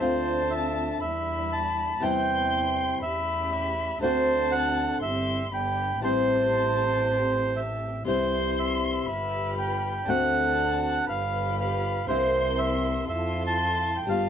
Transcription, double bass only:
0.00 0.96 D2 medium
1.01 1.96 E2 medium
2.02 2.97 E2 medium
3.02 3.96 E2 medium
4.02 4.96 D2 medium
5.01 5.49 G1 medium
5.52 6.00 G1 medium
6.01 7.95 A1 medium
8.05 9.02 C2 medium
9.07 10.03 G1 medium
10.08 11.03 D2 medium
11.09 12.03 G1 medium
12.07 13.03 C2 medium
13.08 14.03 F2 medium
14.08 14.29 G1 medium

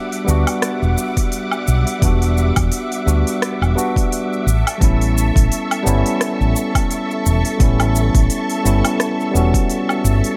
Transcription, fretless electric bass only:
0.28 0.43 D2 medium
0.82 0.94 E1 medium
1.68 1.83 B1 medium
2.02 2.50 E1 loud
2.57 2.69 E1 medium
3.07 3.22 D2 medium
3.61 3.73 E1 medium
4.46 4.62 A1 medium
4.81 5.29 A1 medium
5.36 5.48 A1 medium
5.86 6.02 G1 medium
6.41 6.53 A1 medium
7.26 7.41 E1 medium
7.60 8.08 A1 loud
8.15 8.27 A1 medium
8.65 8.81 G1 medium
9.34 9.50 E1 medium
10.04 10.20 G1 medium

